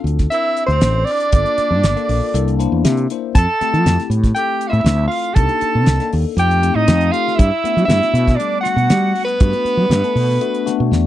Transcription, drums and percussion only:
0.07 closed hi-hat
0.19 kick, snare, closed hi-hat
0.32 closed hi-hat
0.57 closed hi-hat
0.70 closed hi-hat
0.81 snare, closed hi-hat
1.07 open hi-hat
1.20 closed hi-hat
1.32 kick, closed hi-hat
1.46 closed hi-hat
1.58 snare, closed hi-hat
1.83 snare, closed hi-hat
1.97 closed hi-hat
2.09 open hi-hat
2.35 closed hi-hat
2.48 closed hi-hat
2.60 closed hi-hat
2.85 snare, closed hi-hat
2.97 closed hi-hat
3.10 closed hi-hat
3.35 kick, closed hi-hat
3.61 snare, closed hi-hat
3.74 closed hi-hat
3.86 snare, closed hi-hat
4.00 snare, closed hi-hat
4.11 closed hi-hat
4.24 kick, snare, closed hi-hat
4.36 closed hi-hat
4.61 closed hi-hat
4.74 closed hi-hat
4.86 snare, closed hi-hat
5.11 open hi-hat
5.24 closed hi-hat
5.36 kick, closed hi-hat
5.49 closed hi-hat
5.61 closed hi-hat
5.86 snare, closed hi-hat
6.00 snare, closed hi-hat
6.12 open hi-hat
6.38 closed hi-hat
6.51 closed hi-hat
6.63 closed hi-hat
6.88 snare, closed hi-hat
7.01 closed hi-hat
7.14 closed hi-hat
7.28 snare
7.39 kick, closed hi-hat
7.65 closed hi-hat
7.78 closed hi-hat
7.90 snare, closed hi-hat
8.03 snare, closed hi-hat
8.15 closed hi-hat
8.28 kick, snare, closed hi-hat
8.40 closed hi-hat
8.65 snare, closed hi-hat
8.78 closed hi-hat
8.90 snare, closed hi-hat
9.15 open hi-hat
9.28 closed hi-hat
9.40 kick, closed hi-hat
9.53 closed hi-hat
9.66 closed hi-hat
9.91 snare, closed hi-hat
10.04 closed hi-hat
10.16 open hi-hat
10.30 snare
10.41 closed hi-hat
10.54 closed hi-hat
10.67 snare, closed hi-hat
10.92 snare

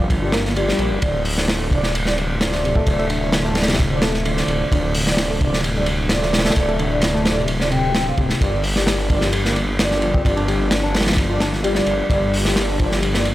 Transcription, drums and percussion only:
0.10 kick, ride
0.32 snare, ride
0.45 snare
0.56 ride
0.69 snare
0.79 ride
1.02 kick, ride
1.25 open hi-hat
1.38 snare
1.48 snare, ride
1.71 kick, ride
1.83 snare
1.95 ride
2.06 snare
2.18 ride
2.41 snare, ride
2.52 snare
2.65 ride
2.76 kick
2.87 kick, ride
2.99 ride
3.10 ride
3.32 snare, ride
3.55 snare, ride
3.62 snare, ride
3.68 snare, ride
3.73 snare, ride
3.80 kick, ride
4.02 snare, ride
4.14 snare
4.25 ride
4.37 snare
4.48 ride
4.72 kick, ride
4.95 open hi-hat
5.07 snare
5.17 snare, ride
5.41 kick, ride
5.54 snare
5.64 ride
5.86 ride
6.09 snare, ride
6.22 snare
6.33 snare, ride
6.38 snare, ride
6.45 snare, ride
6.50 snare, ride
6.56 kick, ride
6.69 ride
6.79 ride
7.02 snare, ride
7.25 snare, ride
7.48 ride
7.61 snare
7.72 ride
7.95 snare, ride
8.17 kick, ride
8.30 snare
8.41 kick, ride
8.64 open hi-hat
8.76 snare
8.87 snare, ride
9.10 kick, ride
9.21 snare
9.33 ride
9.45 snare
9.56 ride
9.79 snare, ride
9.91 snare
10.02 ride
10.14 kick
10.25 kick, ride
10.37 ride
10.48 ride
10.71 snare, ride
10.94 snare, ride
11.01 snare, ride
11.07 snare, ride
11.12 snare, ride
11.17 kick, ride
11.40 snare, ride
11.53 snare
11.64 ride
11.75 snare
11.86 ride
12.10 kick, ride
12.34 open hi-hat
12.45 snare
12.56 snare, ride
12.79 kick, ride
12.92 snare
13.03 ride
13.14 snare
13.25 ride

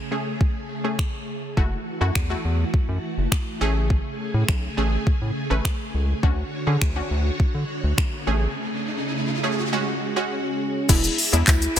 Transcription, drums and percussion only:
0.41 kick
0.99 finger snap, kick
1.57 kick
2.15 finger snap, kick
2.74 kick
3.32 finger snap, kick
3.90 kick
4.49 finger snap, kick
5.07 kick
5.65 finger snap, kick
6.23 kick
6.82 finger snap, kick
7.40 kick
7.98 finger snap, kick
10.89 kick, closed hi-hat, crash, tambourine, shaker
11.04 closed hi-hat, shaker
11.18 open hi-hat, tambourine, shaker
11.33 closed hi-hat, shaker
11.47 kick, clap, closed hi-hat, tambourine, shaker
11.62 closed hi-hat, shaker

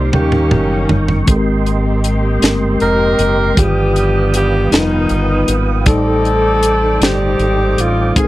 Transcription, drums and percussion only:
0.13 mid tom
0.32 mid tom
0.51 mid tom
0.89 floor tom
1.08 floor tom
1.27 kick, closed hi-hat
1.66 closed hi-hat
2.04 closed hi-hat
2.42 snare, closed hi-hat
2.80 closed hi-hat
3.19 closed hi-hat
3.57 kick, closed hi-hat
3.96 closed hi-hat
4.34 closed hi-hat
4.72 snare, closed hi-hat
5.09 closed hi-hat
5.48 closed hi-hat
5.86 kick, closed hi-hat
6.25 closed hi-hat
6.63 closed hi-hat
7.02 snare, closed hi-hat
7.39 closed hi-hat
7.78 closed hi-hat
8.16 kick, closed hi-hat

